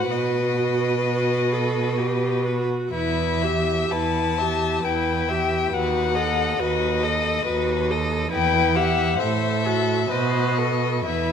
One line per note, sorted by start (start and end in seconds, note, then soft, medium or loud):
0.00 0.11 A2 soft
0.00 0.11 F#4 soft
0.00 0.10 C5 soft
0.00 0.13 F#5 soft
0.12 2.67 B2 soft
0.12 0.95 F#4 soft
0.12 2.67 B4 soft
0.12 2.44 D#5 soft
1.06 1.54 F#4 soft
1.52 2.00 A4 soft
1.98 2.47 G4 soft
2.45 2.92 F#4 soft
2.92 3.80 E2 soft
2.92 3.45 E4 soft
2.92 3.43 B4 soft
2.92 3.93 E5 soft
3.42 3.94 G4 soft
3.42 3.93 E5 soft
3.91 4.73 E2 soft
3.91 4.42 E4 soft
3.91 4.40 B4 soft
3.91 4.86 A5 soft
4.38 4.85 G4 soft
4.38 4.82 E5 soft
4.83 5.63 E2 soft
4.83 5.32 E4 soft
4.83 5.30 B4 soft
4.83 5.75 G5 soft
5.29 5.74 G4 soft
5.29 5.71 E5 soft
5.72 6.49 D#2 soft
5.72 6.17 F#4 soft
5.72 6.16 B4 soft
5.72 6.62 F#5 medium
6.15 6.61 A4 soft
6.15 6.61 D#5 soft
6.59 7.36 D#2 soft
6.59 7.05 F#4 soft
6.59 7.05 B4 soft
6.59 7.90 D#5 soft
7.03 7.46 A4 soft
7.03 7.45 D#5 soft
7.46 8.22 D#2 soft
7.46 7.92 F#4 soft
7.46 7.92 B4 soft
7.91 8.31 A4 soft
7.91 8.31 D#5 soft
8.32 9.09 E2 soft
8.32 8.77 E4 soft
8.32 8.78 B4 soft
8.32 8.77 G5 medium
8.76 9.20 G4 soft
8.76 9.18 E5 soft
8.76 9.21 F#5 medium
9.19 10.00 A2 soft
9.19 9.68 A4 soft
9.19 9.66 C5 soft
9.19 10.13 E5 medium
9.65 10.11 F#4 soft
9.65 10.09 A4 soft
10.09 10.95 B2 soft
10.09 10.60 B4 soft
10.09 10.59 C5 soft
10.09 11.06 D#5 soft
10.57 11.06 A4 soft
10.57 11.05 B4 soft
11.06 11.32 E2 soft
11.06 11.32 E4 soft
11.06 11.32 B4 soft
11.06 11.32 E5 soft